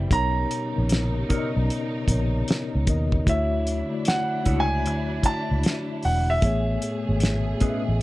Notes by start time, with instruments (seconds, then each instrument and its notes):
Already playing: tine electric piano C3 D3 C4 E4 B4 C5 D5 E5, string section G3
0.09 fingered electric bass B1, tine electric piano B2 B3 D#4, string section C#3 D#4 A#4, grand piano A#5, kick, closed hi-hat
0.13 tine electric piano A#4 C#5
0.51 closed hi-hat
0.74 tine electric piano C#3 B3 D#4 A#4
0.78 fingered electric bass A#1, tine electric piano C#5
0.89 snare, closed hi-hat
1.27 tine electric piano B2 B3 D#4 A#4, clean electric guitar D#4 A#4 C#5, kick, closed hi-hat
1.32 tine electric piano D5, muted fingered electric bass stroke
1.38 tine electric piano D#5
1.57 fingered electric bass B1
1.70 closed hi-hat
2.07 fingered electric bass A#1, tine electric piano C#3 B3 D#4 A#4, kick, closed hi-hat
2.12 tine electric piano C#5
2.48 snare, closed hi-hat
2.75 fingered electric bass C#2
2.85 fingered electric bass D#2, tine electric piano B2 B3 D#4 A#4, kick, closed hi-hat
2.90 tine electric piano D#5
3.12 kick
3.24 tine electric piano D3 A3 E4 F#4, string section F#3 D4 E4, kick, closed hi-hat
3.28 fingered electric bass D2, tine electric piano C#5, grand piano E5
3.67 closed hi-hat
3.89 tine electric piano D3 A3 E4 F#4
3.94 tine electric piano D5
4.05 grand piano F#5, snare, closed hi-hat
4.43 tine electric piano A3 D4 E4 F#4, clean electric guitar E4, kick, closed hi-hat
4.47 fingered electric bass C#2, clean electric guitar F#4 C#5, tine electric piano C#5
4.60 grand piano G#5
4.86 fingered electric bass D2, closed hi-hat
5.22 tine electric piano D3 A3 E4 F#4, kick, closed hi-hat
5.26 tine electric piano D5, grand piano A5
5.51 fingered electric bass C#2
5.63 snare, closed hi-hat
6.03 fingered electric bass E1, grand piano F#5, open hi-hat
6.30 grand piano E5
6.41 fingered electric bass A1, tine electric piano A2 A3 B3 G#4, string section B2 A3 G#4, kick, closed hi-hat
6.45 tine electric piano C#5
6.82 closed hi-hat
7.05 fingered electric bass G#1, tine electric piano B2 A3 B3 G#4
7.10 tine electric piano C#5
7.20 snare, closed hi-hat
7.58 tine electric piano A2 A3 B3 G#4, clean electric guitar C#4 G#4 B4, kick, closed hi-hat
7.62 tine electric piano D#5, muted fingered electric bass stroke
7.70 tine electric piano E5
7.88 fingered electric bass A1